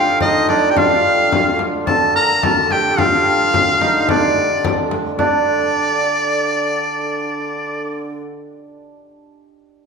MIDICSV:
0, 0, Header, 1, 5, 480
1, 0, Start_track
1, 0, Tempo, 550964
1, 668, Time_signature, 2, 2, 24, 8
1, 8590, End_track
2, 0, Start_track
2, 0, Title_t, "Shawm"
2, 0, Program_c, 0, 111
2, 0, Note_on_c, 0, 77, 96
2, 180, Note_off_c, 0, 77, 0
2, 185, Note_on_c, 0, 75, 91
2, 410, Note_off_c, 0, 75, 0
2, 429, Note_on_c, 0, 74, 86
2, 613, Note_on_c, 0, 79, 77
2, 626, Note_off_c, 0, 74, 0
2, 675, Note_on_c, 0, 77, 105
2, 688, Note_off_c, 0, 79, 0
2, 1419, Note_off_c, 0, 77, 0
2, 1631, Note_on_c, 0, 81, 98
2, 1856, Note_off_c, 0, 81, 0
2, 1879, Note_on_c, 0, 82, 111
2, 2125, Note_on_c, 0, 81, 109
2, 2138, Note_off_c, 0, 82, 0
2, 2369, Note_on_c, 0, 79, 96
2, 2382, Note_off_c, 0, 81, 0
2, 2605, Note_on_c, 0, 77, 120
2, 2618, Note_off_c, 0, 79, 0
2, 3562, Note_off_c, 0, 77, 0
2, 3572, Note_on_c, 0, 74, 87
2, 4250, Note_off_c, 0, 74, 0
2, 4516, Note_on_c, 0, 74, 90
2, 7094, Note_off_c, 0, 74, 0
2, 8590, End_track
3, 0, Start_track
3, 0, Title_t, "Hammered dulcimer"
3, 0, Program_c, 1, 15
3, 0, Note_on_c, 1, 60, 75
3, 0, Note_on_c, 1, 63, 80
3, 0, Note_on_c, 1, 65, 84
3, 0, Note_on_c, 1, 67, 89
3, 0, Note_on_c, 1, 69, 87
3, 179, Note_off_c, 1, 63, 0
3, 183, Note_on_c, 1, 63, 76
3, 430, Note_on_c, 1, 62, 82
3, 482, Note_off_c, 1, 63, 0
3, 617, Note_off_c, 1, 67, 0
3, 620, Note_on_c, 1, 67, 69
3, 668, Note_off_c, 1, 65, 0
3, 672, Note_on_c, 1, 65, 85
3, 1247, Note_off_c, 1, 60, 0
3, 1643, Note_off_c, 1, 69, 0
3, 1646, Note_on_c, 1, 69, 93
3, 1875, Note_on_c, 1, 70, 99
3, 1928, Note_off_c, 1, 69, 0
3, 2118, Note_on_c, 1, 69, 96
3, 2171, Note_off_c, 1, 70, 0
3, 2359, Note_off_c, 1, 67, 0
3, 2363, Note_on_c, 1, 67, 91
3, 2523, Note_off_c, 1, 67, 0
3, 2526, Note_on_c, 1, 67, 66
3, 2582, Note_off_c, 1, 65, 0
3, 2586, Note_on_c, 1, 65, 85
3, 3316, Note_on_c, 1, 63, 86
3, 3368, Note_off_c, 1, 62, 0
3, 3503, Note_off_c, 1, 63, 0
3, 3506, Note_on_c, 1, 63, 56
3, 3569, Note_on_c, 1, 62, 79
3, 3621, Note_off_c, 1, 63, 0
3, 4515, Note_off_c, 1, 62, 0
3, 4519, Note_on_c, 1, 62, 96
3, 4669, Note_off_c, 1, 69, 0
3, 5261, Note_off_c, 1, 67, 0
3, 5516, Note_off_c, 1, 65, 0
3, 7770, Note_off_c, 1, 62, 0
3, 8590, End_track
4, 0, Start_track
4, 0, Title_t, "Hurdy-gurdy"
4, 0, Program_c, 2, 110
4, 0, Note_on_c, 2, 50, 70
4, 666, Note_off_c, 2, 50, 0
4, 666, Note_on_c, 2, 50, 74
4, 4521, Note_off_c, 2, 50, 0
4, 4521, Note_on_c, 2, 50, 68
4, 7144, Note_off_c, 2, 50, 0
4, 8590, End_track
5, 0, Start_track
5, 0, Title_t, "Frame drum"
5, 179, Note_on_c, 9, 64, 86
5, 266, Note_off_c, 9, 64, 0
5, 424, Note_on_c, 9, 64, 71
5, 511, Note_off_c, 9, 64, 0
5, 667, Note_on_c, 9, 64, 91
5, 754, Note_off_c, 9, 64, 0
5, 1153, Note_on_c, 9, 64, 89
5, 1241, Note_off_c, 9, 64, 0
5, 1386, Note_on_c, 9, 64, 69
5, 1473, Note_off_c, 9, 64, 0
5, 1629, Note_on_c, 9, 64, 77
5, 1717, Note_off_c, 9, 64, 0
5, 2118, Note_on_c, 9, 64, 86
5, 2206, Note_off_c, 9, 64, 0
5, 2356, Note_on_c, 9, 64, 71
5, 2444, Note_off_c, 9, 64, 0
5, 2600, Note_on_c, 9, 64, 94
5, 2687, Note_off_c, 9, 64, 0
5, 3084, Note_on_c, 9, 64, 91
5, 3171, Note_off_c, 9, 64, 0
5, 3323, Note_on_c, 9, 64, 75
5, 3410, Note_off_c, 9, 64, 0
5, 3559, Note_on_c, 9, 64, 90
5, 3647, Note_off_c, 9, 64, 0
5, 3804, Note_on_c, 9, 64, 29
5, 3891, Note_off_c, 9, 64, 0
5, 4047, Note_on_c, 9, 64, 95
5, 4134, Note_off_c, 9, 64, 0
5, 4281, Note_on_c, 9, 64, 65
5, 4368, Note_off_c, 9, 64, 0
5, 4519, Note_on_c, 9, 64, 80
5, 4606, Note_off_c, 9, 64, 0
5, 8590, End_track
0, 0, End_of_file